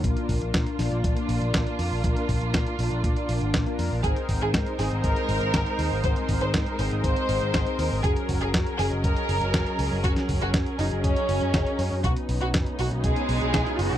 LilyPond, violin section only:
\new Staff \with { instrumentName = "Violin section" } { \time 4/4 \key ges \lydian \tempo 4 = 120 << { r1 | r1 | aes'8. aes'8. aes'8 bes'4.~ bes'16 r16 | c''8. c''8. c''8 c''4.~ c''16 r16 |
aes'8. aes'8. aes'8 bes'4.~ bes'16 r16 | ges'8. ges'8. ees'8 des'4.~ des'16 r16 | \key ces \lydian fis'8. fis'8. fis'8 aes'4.~ aes'16 r16 | } \\ { r1 | r1 | r1 | r1 |
r1 | r1 | r2 aes2 | } >> }